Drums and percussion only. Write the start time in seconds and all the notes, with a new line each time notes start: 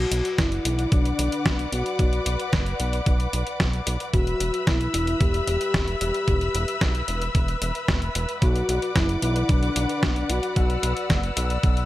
0.12 closed hi-hat
0.25 closed hi-hat
0.38 kick, snare, closed hi-hat
0.52 closed hi-hat
0.65 closed hi-hat
0.79 closed hi-hat
0.92 kick, closed hi-hat
1.05 closed hi-hat
1.19 closed hi-hat
1.32 closed hi-hat
1.46 kick, snare, closed hi-hat
1.59 closed hi-hat
1.73 closed hi-hat
1.86 closed hi-hat
1.99 kick, closed hi-hat
2.13 closed hi-hat
2.26 closed hi-hat
2.40 closed hi-hat
2.53 kick, snare, closed hi-hat
2.66 closed hi-hat
2.80 closed hi-hat
2.93 closed hi-hat
3.06 kick, closed hi-hat
3.20 closed hi-hat
3.33 closed hi-hat
3.47 closed hi-hat
3.60 kick, snare, closed hi-hat
3.73 closed hi-hat
3.87 closed hi-hat
4.00 closed hi-hat
4.14 kick, closed hi-hat
4.27 closed hi-hat
4.40 closed hi-hat
4.54 closed hi-hat
4.67 kick, snare, closed hi-hat
4.81 closed hi-hat
4.94 closed hi-hat
5.07 closed hi-hat
5.21 kick, closed hi-hat
5.34 closed hi-hat
5.47 closed hi-hat
5.61 closed hi-hat
5.74 kick, snare, closed hi-hat
5.88 closed hi-hat
6.01 closed hi-hat
6.14 closed hi-hat
6.28 kick, closed hi-hat
6.41 closed hi-hat
6.55 closed hi-hat
6.68 closed hi-hat
6.81 kick, snare, closed hi-hat
6.95 closed hi-hat
7.08 closed hi-hat
7.22 closed hi-hat
7.35 kick, closed hi-hat
7.48 closed hi-hat
7.62 closed hi-hat
7.75 closed hi-hat
7.88 kick, snare, closed hi-hat
8.02 closed hi-hat
8.15 closed hi-hat
8.29 closed hi-hat
8.42 kick, closed hi-hat
8.56 closed hi-hat
8.69 closed hi-hat
8.82 closed hi-hat
8.96 kick, snare, closed hi-hat
9.09 closed hi-hat
9.22 closed hi-hat
9.36 closed hi-hat
9.49 kick, closed hi-hat
9.63 closed hi-hat
9.76 closed hi-hat
9.89 closed hi-hat
10.03 kick, snare, closed hi-hat
10.16 closed hi-hat
10.30 closed hi-hat
10.43 closed hi-hat
10.56 kick, closed hi-hat
10.70 closed hi-hat
10.83 closed hi-hat
10.97 closed hi-hat
11.10 kick, snare, closed hi-hat
11.23 closed hi-hat
11.37 closed hi-hat
11.50 closed hi-hat
11.63 kick, closed hi-hat
11.77 closed hi-hat